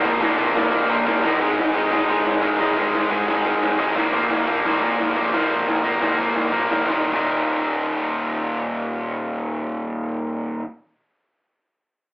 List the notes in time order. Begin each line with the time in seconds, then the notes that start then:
0.04 A#1 A#2 F3 A#3, kick, ride
0.20 A#1 A#2 F3 A#3, snare
0.30 kick
0.37 A#1 A#2 F3 A#3, kick, ride
0.55 A#2 F3 A#3, snare
0.72 A#1 A#2 F3 A#3, kick, snare
0.89 A#1 A#2 F3 A#3
1.06 A#1 A#2 F3 A#3, kick, snare
1.23 A#1 A#2 F3 A#3, snare
1.40 G#1 G#2 D#3 G#3, kick, open hi-hat
1.58 G#1, snare
1.74 G#1 G#2 D#3 G#3, kick, open hi-hat
1.90 G#1 G#2 D#3 G#3, snare
2.08 D#2 G#2 D#3 G#3, kick, open hi-hat
2.26 F2, snare
2.42 G#1 G#2 D#3 G#3, kick, open hi-hat
2.60 G#1 G#2 D#3 G#3, snare
2.76 G#1 G#2 D#3 G#3, kick, open hi-hat
2.93 G#1, snare
3.10 G#2 D#3 G#3, kick
3.27 G#1 G#2 D#3 G#3, snare
3.44 G#1 G#2 D#3 G#3, kick, open hi-hat
3.62 G#1, snare
3.77 G#1 G#2 D#3 G#3, kick, open hi-hat
3.95 A#1 A#2 F3 A#3, snare
4.13 A#1 A#2 F3 A#3, kick, open hi-hat
4.30 A#1, snare
4.47 A#1 A#2 F3 A#3, kick, open hi-hat
4.65 A#1 A#2 F3 A#3, snare
4.82 F2 A#2 F3 A#3, kick, open hi-hat
4.99 G#2, snare
5.16 A#1 A#2 F3 A#3, kick, open hi-hat
5.33 A#1 A#2 F3 A#3, snare
5.50 A#1 A#2 F3 A#3, kick, open hi-hat
5.67 A#1, snare
5.84 A#2 F3 A#3, kick, open hi-hat
6.01 A#1 A#2 F3 A#3, snare
6.18 A#1 A#2 F3 A#3, kick, open hi-hat
6.35 A#1, snare
6.52 A#1 A#2 F3 A#3, kick
6.69 F1 A#2 F3 A#3, snare
6.85 D#1 D#2 A#2 D#3 G3 A#3, kick, snare
6.89 D#4
7.11 D#1 D#2 A#2 D#3 G3 A#3, kick, crash
7.15 D#4